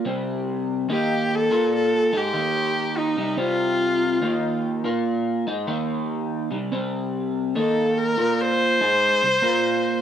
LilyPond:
<<
  \new Staff \with { instrumentName = "Viola" } { \time 4/4 \key c \dorian \tempo 4 = 72 r4 g'8 a'8 a'8 g'4 ees'8 | f'4. r2 r8 | r4 a'8 bes'8 c''2 | }
  \new Staff \with { instrumentName = "Clean electric guitar" } { \time 4/4 \key c \dorian <c g c'>4 <ees bes ees'>8. <bes f' bes'>8. <aes ees'>16 <ees bes ees'>4 <c g>16 | <c g c'>4 <ees bes ees'>8. <bes f' bes'>8. <aes ees'>16 <ees bes ees'>4 <c g>16 | <c g c'>4 <ees bes ees'>8. <bes f' bes'>8. <aes ees' aes'>8 <c g>16 <bes f' bes'>8. | }
>>